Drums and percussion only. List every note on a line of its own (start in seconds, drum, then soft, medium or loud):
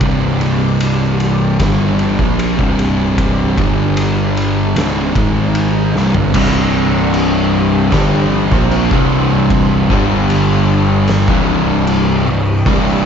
0.01 kick loud
0.01 ride medium
0.41 ride medium
0.81 ride medium
1.20 ride medium
1.60 kick loud
1.60 snare loud
1.60 ride medium
1.99 ride medium
2.19 kick loud
2.39 ride medium
2.59 kick loud
2.79 ride medium
3.18 kick loud
3.18 ride loud
3.58 kick loud
3.58 ride medium
3.97 ride loud
4.37 ride medium
4.76 snare loud
4.76 ride loud
5.15 kick loud
5.15 ride medium
5.55 ride loud
5.96 snare medium
6.14 floor tom medium
6.34 kick loud
6.34 crash loud
6.34 crash medium
7.14 crash medium
7.92 kick loud
7.92 snare loud
7.92 crash medium
8.52 kick loud
8.71 crash medium
8.91 kick loud
9.50 kick loud
9.50 crash medium
9.90 kick loud
10.30 crash medium
11.07 snare loud
11.07 crash medium
11.28 kick loud
11.87 crash medium
12.66 kick loud
12.66 crash medium